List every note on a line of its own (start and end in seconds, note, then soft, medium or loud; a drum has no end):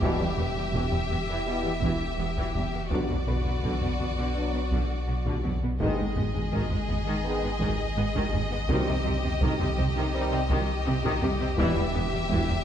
0.00 0.09 E1 medium
0.00 2.92 E1 medium
0.00 0.09 E2 medium
0.00 0.27 B2 medium
0.00 0.19 E3 medium
0.00 0.27 G3 medium
0.00 0.34 A#3 soft
0.00 0.27 E4 medium
0.00 2.87 G4 medium
0.00 2.15 G4 medium
0.00 0.34 A#4 medium
0.00 2.87 E5 medium
0.00 taiko loud
0.19 0.27 E2 medium
0.19 0.28 G3 medium
0.19 taiko low soft
0.38 0.45 E1 medium
0.38 0.45 E2 medium
0.38 0.46 B3 medium
0.38 taiko low medium
0.56 0.63 E2 medium
0.56 0.63 G3 medium
0.56 taiko low medium
0.73 0.81 E1 medium
0.73 0.81 E2 medium
0.73 0.91 E3 medium
0.73 taiko medium
0.92 0.99 E2 medium
0.92 1.00 G3 medium
0.92 taiko low medium
1.10 1.17 E1 medium
1.10 1.17 E2 soft
1.10 1.18 B3 medium
1.10 taiko low medium
1.28 1.35 E2 medium
1.28 1.45 E3 medium
1.46 1.72 B2 medium
1.46 1.72 G3 medium
1.46 1.72 B3 medium
1.46 1.72 E4 medium
1.64 1.72 E2 medium
1.64 1.72 B3 medium
1.82 1.89 E1 medium
1.82 1.90 E2 medium
1.82 1.99 E3 medium
1.82 taiko medium
2.18 2.26 E1 medium
2.18 2.26 E2 medium
2.18 2.26 B3 medium
2.36 2.44 E2 medium
2.36 2.54 E3 medium
2.36 taiko medium
2.55 2.62 E1 medium
2.55 2.62 E2 medium
2.55 2.63 G3 medium
2.55 taiko low soft
2.73 2.80 E2 soft
2.73 2.81 B3 medium
2.90 2.98 B1 medium
2.90 5.82 B1 medium
2.90 2.98 B2 medium
2.90 3.17 B2 medium
2.90 3.08 D3 medium
2.90 3.17 F#3 medium
2.90 3.16 B3 medium
2.90 3.16 D4 medium
2.90 5.60 F#4 medium
2.90 5.56 D5 medium
2.90 taiko medium
3.09 3.16 B2 soft
3.09 3.17 F#3 soft
3.09 taiko low soft
3.27 3.34 B1 soft
3.27 3.34 B2 soft
3.27 3.35 B3 soft
3.27 5.40 B4 medium
3.27 taiko low medium
3.45 3.52 B2 soft
3.45 3.53 F#3 soft
3.45 taiko low medium
3.63 3.70 B1 medium
3.63 3.70 B2 medium
3.63 3.80 D3 medium
3.63 taiko medium
3.81 3.88 B2 soft
3.81 3.89 F#3 soft
3.81 taiko low soft
3.99 4.07 B1 soft
3.99 4.06 B2 soft
3.99 4.07 B3 soft
3.99 taiko low medium
4.18 4.25 B2 medium
4.18 4.35 D3 medium
4.35 4.61 B2 medium
4.35 4.62 F#3 medium
4.35 4.61 B3 medium
4.35 4.61 D4 soft
4.53 4.61 B2 soft
4.53 4.61 B3 soft
4.72 4.79 B1 medium
4.72 4.79 B2 medium
4.72 4.89 D3 medium
4.72 taiko medium
5.08 5.15 B1 soft
5.08 5.15 B2 soft
5.08 5.15 B3 soft
5.26 5.33 B2 medium
5.26 5.43 D3 medium
5.26 taiko medium
5.44 5.52 B1 soft
5.44 5.51 B2 soft
5.44 5.51 F#3 medium
5.44 taiko low medium
5.62 5.69 B2 soft
5.62 5.70 B3 soft
5.80 5.87 G#1 medium
5.80 8.71 G#1 medium
5.80 5.87 G#2 medium
5.80 5.97 D#3 medium
5.80 6.06 D#3 medium
5.80 6.06 G#3 medium
5.80 6.06 B3 medium
5.80 6.06 D#4 medium
5.80 8.65 G#4 medium
5.80 11.55 D#5 medium
5.80 taiko loud
5.98 6.06 G#2 medium
5.98 6.05 G#3 medium
5.98 taiko low medium
6.16 6.24 G#1 medium
6.16 6.24 G#2 medium
6.16 6.23 B3 soft
6.16 taiko low medium
6.34 6.41 G#2 medium
6.34 6.42 G#3 medium
6.34 taiko low medium
6.52 6.59 G#1 medium
6.52 6.59 G#2 medium
6.52 6.69 D#3 medium
6.52 taiko medium
6.70 6.78 G#2 medium
6.70 6.78 G#3 medium
6.70 taiko low medium
6.88 6.95 G#1 medium
6.88 6.96 G#2 medium
6.88 6.96 B3 medium
6.88 taiko low medium
7.06 7.14 G#2 medium
7.06 7.23 D#3 medium
7.24 7.50 D#3 medium
7.24 7.51 G#3 medium
7.24 7.50 B3 medium
7.24 7.50 D#4 medium
7.43 7.50 G#2 medium
7.43 7.50 B3 medium
7.60 7.68 G#1 medium
7.60 7.68 G#2 medium
7.60 7.77 D#3 medium
7.60 taiko medium
7.97 8.04 G#1 medium
7.97 8.04 G#2 medium
7.97 8.04 B3 medium
8.15 8.22 G#2 medium
8.15 8.32 D#3 medium
8.15 taiko medium
8.33 8.40 G#1 medium
8.33 8.40 G#2 medium
8.33 8.40 G#3 medium
8.33 taiko low medium
8.50 8.58 G#2 medium
8.50 8.58 B3 medium
8.68 8.76 C2 medium
8.68 11.60 C2 medium
8.68 8.76 C3 medium
8.68 8.86 D#3 medium
8.68 8.95 D#3 medium
8.68 8.95 G3 medium
8.68 8.95 C4 medium
8.68 8.95 D#4 medium
8.68 12.64 G4 medium
8.68 taiko loud
8.87 8.95 C3 medium
8.87 8.94 G3 medium
8.87 taiko low medium
9.04 9.12 C2 medium
9.04 9.13 C3 medium
9.04 9.12 C4 medium
9.04 taiko low medium
9.23 9.31 C3 medium
9.23 9.30 G3 medium
9.23 taiko low medium
9.41 9.48 C2 loud
9.41 9.49 C3 medium
9.41 9.58 D#3 medium
9.41 11.54 A4 medium
9.41 taiko medium
9.59 9.67 C3 medium
9.59 9.66 G3 medium
9.59 taiko low medium
9.77 9.85 C2 medium
9.77 9.85 C3 medium
9.77 9.85 C4 medium
9.77 taiko low medium
9.95 10.03 C3 medium
9.95 10.12 D#3 medium
10.14 10.40 D#3 medium
10.14 10.39 G3 medium
10.14 10.39 C4 medium
10.14 10.40 D#4 medium
10.32 10.39 C3 medium
10.32 10.39 C4 medium
10.50 10.57 C2 loud
10.50 10.57 C3 loud
10.50 10.67 D#3 medium
10.50 taiko medium
10.86 10.93 C2 medium
10.86 10.94 C3 medium
10.86 10.93 C4 medium
11.04 11.12 C3 medium
11.04 11.21 D#3 medium
11.04 taiko medium
11.22 11.29 C2 medium
11.22 11.30 C3 medium
11.22 11.29 G3 medium
11.22 12.64 G3 medium
11.22 12.64 G4 medium
11.22 taiko low medium
11.40 11.48 C3 medium
11.40 11.47 C4 medium
11.58 11.65 E1 medium
11.58 12.64 E1 medium
11.58 11.66 E2 loud
11.58 11.84 B2 medium
11.58 11.75 E3 loud
11.58 11.84 G3 medium
11.58 11.84 B3 medium
11.58 11.84 E4 medium
11.58 12.64 E5 loud
11.58 taiko loud
11.76 11.84 E2 medium
11.76 11.84 G3 medium
11.76 taiko low medium
11.94 12.02 E1 medium
11.94 12.02 E2 medium
11.94 12.02 B3 medium
11.94 taiko low medium
12.12 12.20 E2 medium
12.12 12.20 G3 medium
12.12 taiko low medium
12.30 12.38 E1 loud
12.30 12.38 E2 loud
12.30 12.48 E3 medium
12.30 taiko medium
12.49 12.56 E2 medium
12.49 12.57 G3 medium
12.49 taiko low medium